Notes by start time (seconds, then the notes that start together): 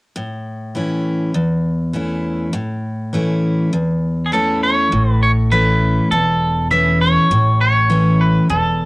0.16 A2
0.75 E3 A3 C#4 E4
1.34 E2
1.93 E3 A3 C#4 E4
2.53 A2
3.13 E3 A3 C#4 E4
3.73 E2
4.26 G#4
4.32 E3 A3 C#4 E4 A4
4.63 C#5
4.92 A1 A2
5.10 B4
5.23 C#5
5.51 E3 A3 C#4 E4 B4
6.11 E1 E2 A4
6.71 E3 A3 C#4 E4 E5
7.01 C#5
7.30 A1 A2
7.61 C#5
7.90 E3 A3 C#4 E4
8.21 B4
8.49 E1 E2 A4